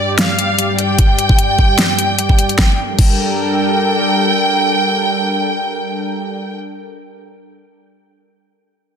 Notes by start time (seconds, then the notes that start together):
Already playing: G2 G3 G4 D5
0.19 F5, snare, closed hi-hat
0.39 closed hi-hat
0.59 closed hi-hat
0.79 G5, closed hi-hat
0.99 kick, closed hi-hat
1.19 closed hi-hat
1.29 kick
1.39 closed hi-hat
1.59 kick
1.79 snare, closed hi-hat
1.99 closed hi-hat
2.19 closed hi-hat
2.29 kick
2.39 closed hi-hat
2.49 closed hi-hat
2.59 G3 D4 A4 A#4 G5, kick, snare
2.99 G5, kick, crash